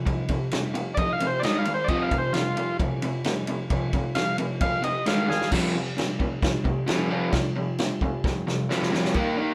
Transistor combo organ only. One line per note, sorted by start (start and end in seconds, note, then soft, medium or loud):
0.94 0.97 D5 medium
0.98 1.13 D#5 loud
1.13 1.27 F5 loud
1.27 1.42 C5 loud
1.40 1.42 D5 medium
1.44 1.58 D#5 loud
1.58 1.73 F5 loud
1.74 1.88 C5 medium
1.84 1.87 D5 medium
1.88 2.03 D#5 loud
2.03 2.18 F5 medium
2.18 2.33 C5 loud
2.33 2.77 F4 loud
4.15 4.37 F5 loud
4.61 4.83 F5 loud
4.84 5.06 D#5 loud
5.08 5.29 F5 medium
5.29 5.50 G#4 medium
5.29 5.51 F5 loud